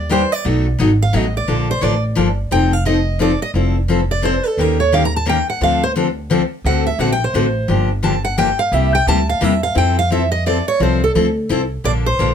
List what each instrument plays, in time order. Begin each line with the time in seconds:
Already playing: upright bass D#2
0.09 steel-string acoustic guitar D#3 G3 A#3 D4 G4 C5
0.32 steel-string acoustic guitar D5
0.44 upright bass B1, steel-string acoustic guitar B2 F#3 A3 D#4 F#4
0.79 upright bass G#1, steel-string acoustic guitar B2 F#3 A3 D#4 F#4
1.02 steel-string acoustic guitar F5
1.13 upright bass A1, steel-string acoustic guitar B2 F#3 A3 D#4 F#4 D#5
1.37 steel-string acoustic guitar D5
1.48 upright bass A#1, steel-string acoustic guitar D3 F3 A#3 D4 A4
1.71 steel-string acoustic guitar C5
1.81 upright bass A1, steel-string acoustic guitar D3 F3 A#3 D4 A4 D5
2.15 upright bass G1, steel-string acoustic guitar D3 F3 A#3 D4 A4
2.51 upright bass F1, steel-string acoustic guitar F3 C4 D#4 A4 G5
2.73 steel-string acoustic guitar F5
2.85 steel-string acoustic guitar F3 C4 D#4 A4 D#5
3.19 steel-string acoustic guitar F3 C4 D#4 A4 D5
3.42 steel-string acoustic guitar D#5
3.54 upright bass F1, steel-string acoustic guitar F3 C4 E4 A4
3.88 steel-string acoustic guitar F3 C4 E4 A4
4.11 steel-string acoustic guitar D5
4.22 steel-string acoustic guitar F3 C4 E4 A4 C5
4.47 steel-string acoustic guitar A4
4.57 upright bass D#2, steel-string acoustic guitar D#3 A#3 C#4 G4 A#4
4.80 steel-string acoustic guitar C#5
4.92 steel-string acoustic guitar D#3 A#3 C#4 G4 A#4 F5
5.05 steel-string acoustic guitar A#5
5.16 steel-string acoustic guitar A5
5.26 steel-string acoustic guitar D#3 A#3 C#4 G4 A#4 G5
5.50 steel-string acoustic guitar F#5
5.61 upright bass D2, steel-string acoustic guitar D3 F3 C4 D4 A4 F5
5.83 steel-string acoustic guitar C5
5.96 steel-string acoustic guitar D3 F3 C4 D4 A4
6.30 steel-string acoustic guitar D3 F3 C4 D4 A4
6.64 upright bass D2, steel-string acoustic guitar D3 A3 C4 F#4 A4 F#5
6.87 steel-string acoustic guitar E5
6.98 upright bass A#1, steel-string acoustic guitar D3 A3 C4 F#4 A4 F#5
7.12 steel-string acoustic guitar G5
7.24 steel-string acoustic guitar C5
7.34 upright bass A1, steel-string acoustic guitar D3 A3 C4 F#4 A4
7.68 upright bass G1, steel-string acoustic guitar D3 F3 A#3 D4 G4
8.03 steel-string acoustic guitar D3 F3 A#3 D4 G4 A5
8.25 steel-string acoustic guitar F#5
8.38 steel-string acoustic guitar D3 F3 A#3 D4 G4 G5
8.59 steel-string acoustic guitar F5
8.72 upright bass C2, steel-string acoustic guitar C3 G3 A#3 E4 G4 E5
8.95 steel-string acoustic guitar G5
9.07 upright bass D2, steel-string acoustic guitar C3 G3 A#3 E4 G4 A5
9.29 steel-string acoustic guitar F5
9.41 upright bass E2, steel-string acoustic guitar C3 G3 A#3 E4 G4 E5
9.63 steel-string acoustic guitar F5
9.75 upright bass F2, steel-string acoustic guitar F3 C4 E4 A4 G5
9.99 steel-string acoustic guitar F5
10.10 steel-string acoustic guitar F3 C4 E4 A4 E5
10.32 steel-string acoustic guitar D#5
10.46 steel-string acoustic guitar F3 C4 E4 A4 D5
10.68 steel-string acoustic guitar C#5
10.80 upright bass C2, steel-string acoustic guitar F3 C4 E4 A4 C5
11.04 steel-string acoustic guitar A4
11.15 upright bass D2, steel-string acoustic guitar F3 C4 E4 A4
11.49 upright bass C2, steel-string acoustic guitar F3 C4 E4 A4
11.84 upright bass A#1, steel-string acoustic guitar D3 F3 A#3 D4 A4 D5
12.06 steel-string acoustic guitar C5
12.19 upright bass A#1, steel-string acoustic guitar D3 F3 A#3 D4 A4